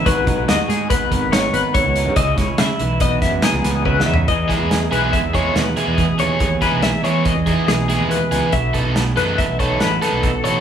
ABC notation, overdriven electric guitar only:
X:1
M:5/4
L:1/8
Q:1/4=141
K:E
V:1 name="Overdriven electric guitar"
z8 z2 | z8 z2 | z [G,B,EG] z [G,B,EG] z [G,B,EG] z [G,B,EG] z [G,B,EG] | z [G,B,EG] z [G,B,EG] z [G,B,EG] z [G,B,EG] z [G,B,EG] |
z [F,B,DA] z [F,B,DA] z [F,B,DA] z [F,B,DA] z [F,B,DA] |]